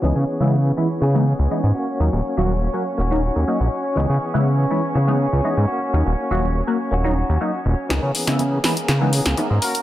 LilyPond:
<<
  \new Staff \with { instrumentName = "Trumpet section" } { \time 4/4 \key cis \dorian \tempo 4 = 122 r1 | r1 | r1 | r1 |
r2. r8 ais'8 | }
  \new Staff \with { instrumentName = "String section" } { \time 4/4 \key cis \dorian <cis' cis''>1~ | <cis' cis''>1~ | <cis' cis''>1~ | <cis' cis''>1 |
<ais ais'>1 | }
  \new Staff \with { instrumentName = "Clean electric guitar" } { \time 4/4 \key cis \dorian <e b cis' gis'>2 <e b cis' gis'>8 <b cis' gis'>4 <ais cis' fis'>8~ | <ais cis' fis'>2 <ais cis' fis'>8 <cis' fis'>4. | <e b cis' gis'>2 <e b cis' gis'>8 <b cis' gis'>4 <ais cis' fis'>8~ | <ais cis' fis'>2 <ais cis' fis'>8 <cis' fis'>4. |
<e b cis' gis'>8 <e b cis' gis'>16 <b cis'>16 <e b cis' gis'>8 <e b cis' gis'>16 <b cis' gis'>8 <b cis' gis'>16 <e b cis' gis'>16 <b gis'>16 <e b cis' gis'>16 <b cis' gis'>16 <ais cis' fis'>8 | }
  \new Staff \with { instrumentName = "Analog polysynth" } { \time 4/4 \key cis \dorian <e gis b dis'>16 r8 <e gis b e'>16 r8 <e gis b e'>16 r8 <e gis b dis'>16 r8 <e gis b dis'>16 r8. | <fis ais cis' dis'>16 r8 <fis ais cis' fis'>16 r8 <fis ais cis' fis'>16 r8 <fis ais cis' dis'>16 r8 <fis ais cis' dis'>16 r8. | <e gis b dis'>16 r8 <e gis b e'>16 r8 <e gis b e'>16 r8 <e gis b dis'>16 r8 <e gis b dis'>16 r8. | <fis ais cis' dis'>16 r8 <fis ais cis' fis'>16 r8 <fis ais cis' fis'>16 r8 <fis ais cis' dis'>16 r8 <fis ais cis' dis'>16 r8. |
<e gis b dis'>16 r8 <e gis b e'>16 r8 <e gis b e'>16 r8 <e gis b dis'>16 r8 <e gis b dis'>16 r8. | }
  \new Staff \with { instrumentName = "Analog synth bass" } { \clef bass \time 4/4 \key cis \dorian cis,16 cis16 r16 cis8. r8 cis8. cis,16 r16 gis,16 r8 | dis,16 dis,,16 r16 dis,,8. r8 dis,,8. dis,16 r16 ais,,16 r8 | cis,16 cis16 r16 cis8. r8 cis8. cis,16 r16 gis,16 r8 | dis,16 dis,,16 r16 dis,,8. r8 dis,,8. dis,16 r8 dis,,16 r16 |
cis,16 cis16 r16 cis8. r8 cis8. cis,16 r16 gis,16 r8 | }
  \new DrumStaff \with { instrumentName = "Drums" } \drummode { \time 4/4 r4 r4 r4 r4 | r4 r4 r4 r4 | r4 r4 r4 r4 | r4 r4 r4 r4 |
<hh sn>8 hho16 <hh sn>16 hh8 <hho sn>16 hh16 <hh sn>8 hho16 <hh sn>16 hh8 hho16 hh16 | }
>>